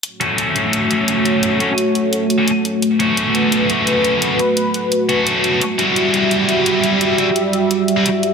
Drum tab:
HH |xxxxxxxx|xxxxxxxx|xxxxxxxx|xxxxxxxx|

HH |xxxxxxxx|xxxxxxxx|